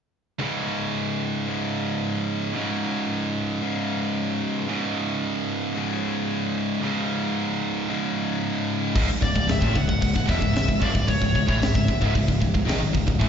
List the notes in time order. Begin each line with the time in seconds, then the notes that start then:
0.39 C#2 G#2 C#3
1.46 C#2 G#2 C#3
2.54 C#2 G#2 C#3
3.61 C#2 G#2 C#3
4.67 C#2 G#2 C#3
5.74 C#2 G#2 C#3
6.81 C#2 G#2 C#3
7.88 C#2 G#2 C#3
8.96 C#1 C#2 G#2, kick, crash
9.09 muted distorted electric guitar stroke, muted picked electric bass stroke
9.22 C#1 C#2 G#2 D5, kick, crash
9.36 C#1 C#2 G#2, kick
9.48 C#1 C#2 G#2 E5, snare, crash
9.62 A1 A2 E3, kick
9.75 C#1 C#2 G#2 F#5, kick, crash
9.88 C#1 C#2 G#2, kick
10.02 C#1 C#2 G#2, kick, crash
10.16 C#1 C#2 G#2, kick
10.28 E1 E2 B2 E5, kick, crash
10.41 C#1 C#2 G#2, kick
10.54 C#1 C#2 G#2, snare, crash
10.69 C#1 C#2 G#2, kick
10.81 F#1 F#2 C#3 D5, kick, crash
10.95 C#1 C#2 G#2, kick
11.08 C#1 C#2 G#2 C#5, kick, crash
11.22 C#1 C#2 G#2, kick
11.35 C#1 C#2 G#2, kick, crash
11.48 A1 A2 E3, kick
11.61 C#1 C#2 G#2 E5, snare, crash
11.75 C#1 C#2 G#2, kick
11.88 C#1 C#2 G#2, kick, crash
12.01 C#1 C#2 G#2, kick
12.15 C#1 C#2 G#2, kick, crash
12.27 C#1 C#2 G#2, kick
12.41 C#1 C#2 G#2, kick, crash
12.54 C#1 C#2 G#2, kick
12.65 G#2 D#3, crash
12.69 G#1, snare
12.80 muted distorted electric guitar stroke
12.84 muted picked electric bass stroke
12.93 C#1 C#2 G#2, kick, crash
13.07 C#1 C#2 G#2, kick
13.19 A1 A2 E3, kick, crash